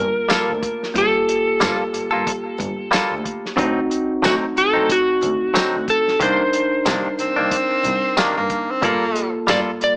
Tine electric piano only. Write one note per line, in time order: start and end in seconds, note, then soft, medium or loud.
0.00 0.91 A#3 medium
0.00 0.92 F4 medium
0.00 0.93 A#4 medium
0.94 3.54 A#3 medium
0.94 3.54 F4 medium
0.94 3.55 G4 medium
3.56 6.16 C4 medium
3.56 6.17 D#4 medium
3.56 6.18 F#4 medium
6.19 8.79 D4 medium
6.19 8.80 D#4 medium
6.19 8.80 A#4 medium
8.81 9.97 A#3 medium
8.81 9.97 F4 medium
8.81 9.97 A4 medium